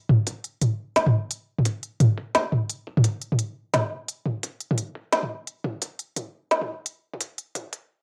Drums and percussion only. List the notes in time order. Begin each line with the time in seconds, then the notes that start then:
0.09 kick, mid tom
0.27 kick, closed hi-hat
0.44 closed hi-hat
0.61 closed hi-hat, mid tom
0.96 snare, closed hi-hat
1.06 mid tom
1.31 closed hi-hat
1.59 mid tom
1.65 kick, closed hi-hat
1.83 closed hi-hat
2.00 closed hi-hat, mid tom
2.18 kick
2.35 snare, closed hi-hat
2.52 mid tom
2.70 closed hi-hat
2.87 kick
2.97 mid tom
3.04 kick, closed hi-hat
3.21 closed hi-hat
3.32 mid tom
3.39 closed hi-hat
3.74 snare, closed hi-hat, mid tom
4.08 closed hi-hat
4.26 mid tom
4.43 kick, closed hi-hat
4.61 closed hi-hat
4.71 mid tom
4.78 closed hi-hat
4.95 kick
5.13 snare, closed hi-hat
5.23 mid tom
5.47 closed hi-hat
5.64 kick, mid tom
5.82 kick, closed hi-hat
5.99 closed hi-hat
6.17 closed hi-hat, mid tom
6.51 snare, closed hi-hat
6.61 mid tom
6.86 closed hi-hat
7.13 mid tom
7.20 kick, closed hi-hat
7.38 closed hi-hat
7.55 closed hi-hat, mid tom
7.73 kick, closed hi-hat